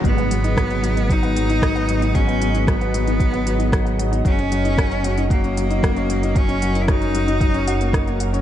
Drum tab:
HH |xxxxxxxxxxxxxxxx|xxxxxxxxxxxxxxxx|xxxxxxxxxxxxxxxx|xxxxxxxxxxxxxxxx|
SD |----r-------r---|----r-------r---|----r-------r---|----r-------r---|
BD |o---o---o---o---|o---o---o---o---|o---o---o---o---|o---o---o---o---|